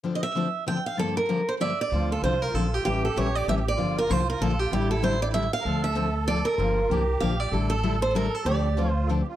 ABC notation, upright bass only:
X:1
M:3/4
L:1/8
Q:"Swing" 1/4=192
K:Dm
V:1 name="Upright bass" clef=bass
z6 | z6 | D,,2 C,,2 B,,,2 | A,,,2 B,,,2 A,,,2 |
G,,,2 C,,2 B,,,2 | A,,,6 | D,,6 | G,,,2 C,,2 B,,,2 |
A,,,6 | D,,6 |]